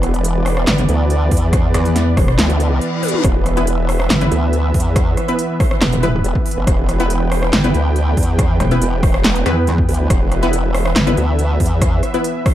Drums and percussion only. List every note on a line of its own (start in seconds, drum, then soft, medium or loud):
0.03 cross-stick medium
0.03 closed hi-hat medium
0.14 closed hi-hat soft
0.24 closed hi-hat medium
0.46 cross-stick medium
0.46 open hi-hat medium
0.57 cross-stick medium
0.67 snare loud
0.67 clap loud
0.67 closed hi-hat medium
0.78 closed hi-hat soft
0.89 closed hi-hat medium
1.10 closed hi-hat medium
1.31 kick medium
1.31 open hi-hat medium
1.37 closed hi-hat medium
1.53 kick loud
1.53 cross-stick medium
1.53 closed hi-hat medium
1.74 cross-stick soft
1.74 closed hi-hat medium
1.85 closed hi-hat soft
1.96 snare medium
1.96 closed hi-hat medium
2.17 kick loud
2.17 cross-stick medium
2.17 open hi-hat medium
2.28 cross-stick medium
2.39 snare loud
2.39 clap loud
2.39 closed hi-hat medium
2.50 closed hi-hat soft
2.60 closed hi-hat medium
2.81 closed hi-hat medium
3.03 open hi-hat loud
3.03 high tom medium
3.08 closed hi-hat medium
3.14 mid tom medium
3.24 kick loud
3.24 cross-stick medium
3.24 closed hi-hat medium
3.46 cross-stick medium
3.46 closed hi-hat medium
3.57 closed hi-hat soft
3.67 closed hi-hat medium
3.89 cross-stick medium
3.89 open hi-hat medium
4.00 cross-stick medium
4.10 snare loud
4.10 clap loud
4.10 closed hi-hat medium
4.21 closed hi-hat soft
4.32 closed hi-hat medium
4.53 closed hi-hat medium
4.74 kick medium
4.74 open hi-hat medium
4.80 closed hi-hat medium
4.96 kick loud
4.96 cross-stick medium
4.96 closed hi-hat medium
5.17 cross-stick medium
5.17 closed hi-hat medium
5.28 closed hi-hat soft
5.39 closed hi-hat medium
5.60 kick loud
5.60 cross-stick medium
5.60 open hi-hat medium
5.71 cross-stick medium
5.82 snare loud
5.82 clap loud
5.82 closed hi-hat medium
5.93 closed hi-hat soft
6.03 closed hi-hat medium
6.24 closed hi-hat medium
6.35 kick medium
6.46 open hi-hat medium
6.51 closed hi-hat medium
6.67 kick loud
6.67 cross-stick medium
6.67 closed hi-hat medium
6.89 cross-stick medium
6.89 closed hi-hat medium
7.00 closed hi-hat soft
7.10 closed hi-hat medium
7.32 cross-stick medium
7.32 open hi-hat medium
7.43 cross-stick medium
7.53 snare loud
7.53 clap medium
7.53 closed hi-hat medium
7.64 closed hi-hat soft
7.74 closed hi-hat soft
7.96 closed hi-hat medium
8.17 kick medium
8.17 open hi-hat medium
8.23 closed hi-hat medium
8.39 kick loud
8.39 cross-stick medium
8.39 closed hi-hat medium
8.60 cross-stick medium
8.60 closed hi-hat soft
8.71 closed hi-hat soft
8.82 closed hi-hat medium
9.03 kick loud
9.03 cross-stick medium
9.03 open hi-hat medium
9.14 cross-stick medium
9.24 snare loud
9.24 clap medium
9.24 closed hi-hat medium
9.36 closed hi-hat soft
9.46 closed hi-hat soft
9.67 closed hi-hat soft
9.78 kick medium
9.89 open hi-hat medium
9.94 closed hi-hat medium
10.10 kick loud
10.10 cross-stick medium
10.10 closed hi-hat medium
10.32 cross-stick medium
10.32 closed hi-hat soft
10.43 closed hi-hat soft
10.53 closed hi-hat medium
10.74 cross-stick medium
10.74 open hi-hat medium
10.86 cross-stick medium
10.96 snare loud
10.96 clap medium
10.96 closed hi-hat medium
11.07 closed hi-hat soft
11.17 closed hi-hat soft
11.39 closed hi-hat soft
11.60 kick medium
11.60 open hi-hat medium
11.66 closed hi-hat medium
11.82 kick loud
11.82 cross-stick medium
11.82 closed hi-hat medium
12.03 cross-stick medium
12.03 closed hi-hat medium
12.14 closed hi-hat soft
12.24 closed hi-hat medium
12.46 kick loud
12.46 cross-stick medium
12.46 open hi-hat medium